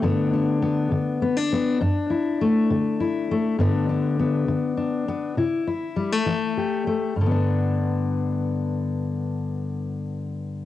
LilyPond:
\new Staff \with { instrumentName = "Steel-string acoustic guitar" } { \time 6/8 \key g \major \tempo 4. = 67 << { <d b d'>8 d'8 b4 b16 d'16 b8 | d'8 e'8 a4 e'8 a8 | <d b d'>8 d'8 b4 d'8 b8 | e'8 e'8 g16 a8. g'8 a8 |
<d b d'>2.~ | <d b d'>2. | } \\ { g,4 r8 d4 r8 | fis,4 r8 d4 r8 | g,4 r8 d4 r8 | c4 r8 e4 r8 |
g,2.~ | g,2. | } >> }